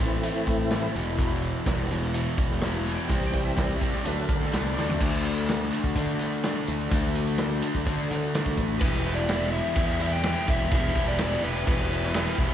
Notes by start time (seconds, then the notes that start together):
Already playing: E3 A3 C4
0.00 A1 A2 E3 A3 D#4, closed hi-hat
0.06 E4
0.12 snare
0.23 A2 E3 A3, closed hi-hat
0.47 A2, kick, closed hi-hat
0.71 A2 E3 A3, snare, closed hi-hat
0.95 E1 E2 B2 E3, closed hi-hat
1.18 E2 B2 E3, kick, closed hi-hat
1.42 closed hi-hat
1.65 E1 E2 B2 E3 G3 B3, kick, snare, closed hi-hat
1.91 E2 B2 E3, closed hi-hat
2.03 snare
2.14 E2 B2 E3, closed hi-hat
2.38 E1, kick, closed hi-hat
2.50 snare
2.61 E2 B2 E3, snare, closed hi-hat
2.85 E2 B2 E3, closed hi-hat
2.95 G5
3.07 C2 C3 E3 G3 C4, kick, closed hi-hat
3.26 G5
3.33 C2, kick, closed hi-hat
3.44 E5
3.56 C2 C3 G3 C4 D5, kick, snare, closed hi-hat
3.76 C3 E5
3.80 C2 G3 C4, kick, closed hi-hat
3.90 D5
3.95 snare
4.04 D2 D3 F#3 A3 D4 B4, closed hi-hat
4.24 A#4
4.29 D3, kick, closed hi-hat
4.39 A4, snare
4.52 C2 D3 A3 D4, snare, closed hi-hat
4.57 B4
4.72 D5
4.77 D2 D3 A3 D4, snare
4.89 floor tom
5.00 D2 D3 A3 D4 F#4 D5, kick, crash
5.04 A4
5.13 closed hi-hat
5.25 closed hi-hat
5.38 closed hi-hat
5.49 snare, closed hi-hat
5.71 D3 A3 D4, closed hi-hat
5.84 D2, kick, closed hi-hat
5.95 D3 A3 D4, kick, closed hi-hat
6.08 closed hi-hat
6.19 snare, closed hi-hat
6.32 closed hi-hat
6.43 D3 A3 D4, snare, closed hi-hat
6.67 D2, closed hi-hat
6.80 closed hi-hat
6.91 D2 D3 A3 D4, kick, closed hi-hat
7.15 closed hi-hat
7.27 closed hi-hat
7.38 snare, closed hi-hat
7.61 D3 A3 D4, closed hi-hat
7.75 D2, kick, closed hi-hat
7.85 D3 A3 D4, kick, closed hi-hat
8.11 D3, snare, closed hi-hat
8.23 closed hi-hat
8.34 D3 A3 D4, snare, closed hi-hat
8.46 D3, kick, closed hi-hat
8.58 A1, kick, closed hi-hat
8.81 E1 E3 G3 B3 E4 G4 B4, kick, ride bell
9.05 G3 B3 E4 G4
9.15 D5
9.28 E3 G3 B3 E4 G4, snare, ride bell
9.41 snare
9.51 B3 E4 G4 E5
9.75 E2 E3 G3 B3 E4 G4, kick, ride bell
9.87 E5
9.99 E3 B3 E4 G4
10.03 G3 E5
10.13 G5
10.23 E3 G3 B3 E4 G4, snare, ride bell
10.47 E1 G3 B3 E4 G4 E5, kick
10.70 E1 E3 G3 B3 E4 G4 E5, kick, ride bell
10.95 E1 B3 E4 G4, kick
10.99 G3
11.08 D5
11.19 E3 G3 B3 E4 G4, snare, ride bell
11.43 E1 B3 E4 G4 B4
11.67 E1 E3 G3 B3 E4 G4 B4, kick, ride bell
11.91 E3 G3 B3 E4 G4
12.03 snare
12.14 E3 G3 B3 E4, snare, ride bell
12.18 G4
12.38 E1 G3 E4 G4, kick, snare
12.43 B3